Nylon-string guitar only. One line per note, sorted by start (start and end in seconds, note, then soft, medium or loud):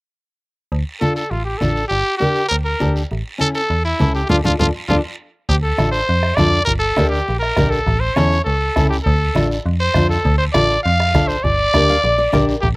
1.01 1.22 D4 medium
1.01 1.22 F4 medium
1.01 1.23 A4 medium
1.61 1.82 D4 medium
1.61 1.82 F4 medium
1.61 1.82 A4 medium
2.20 2.41 D4 medium
2.20 2.42 G4 medium
2.20 2.42 A#4 medium
2.80 3.01 D4 medium
2.80 3.01 G4 medium
2.80 3.02 A4 medium
3.38 3.60 C#4 medium
3.38 3.61 E4 medium
3.38 3.61 A4 medium
3.99 4.21 C#4 medium
3.99 4.21 E4 medium
3.99 4.21 A4 medium
4.29 4.39 D4 medium
4.29 4.40 F4 medium
4.29 4.39 A4 medium
4.44 4.54 D4 medium
4.44 4.54 F4 medium
4.44 4.54 A4 medium
4.59 4.69 D4 medium
4.59 4.69 F4 medium
4.59 4.69 A4 medium
4.90 4.99 D4 medium
4.90 5.00 F4 medium
4.90 4.99 A4 medium
5.78 5.99 D4 medium
5.78 5.99 F4 medium
5.78 5.99 A4 medium
6.38 6.59 D4 medium
6.38 6.59 F4 medium
6.38 6.60 A4 medium
6.96 7.18 D4 medium
6.96 7.18 G4 medium
6.96 7.18 A#4 medium
7.56 7.78 D4 medium
7.56 7.78 G4 medium
7.56 7.78 A#4 medium
8.16 8.37 C#4 medium
8.16 8.37 E4 medium
8.16 8.38 A4 medium
8.76 8.97 C#4 medium
8.76 8.97 E4 medium
8.76 8.97 A4 medium
9.35 9.56 D4 medium
9.35 9.56 F4 medium
9.35 9.56 A4 medium
9.95 10.16 D4 medium
9.95 10.16 F4 medium
9.95 10.17 A4 medium
10.54 10.76 D4 medium
10.54 10.76 F4 medium
10.54 10.76 A4 medium
11.14 11.35 D4 medium
11.14 11.35 F4 medium
11.14 11.36 A4 medium
11.74 11.95 D4 medium
11.74 11.95 G4 medium
11.74 11.96 A#4 medium
11.90 12.03 F5 medium
12.04 12.17 D5 medium
12.18 12.32 D5 medium
12.32 12.54 D4 medium
12.32 12.54 G4 medium
12.32 12.61 A#4 medium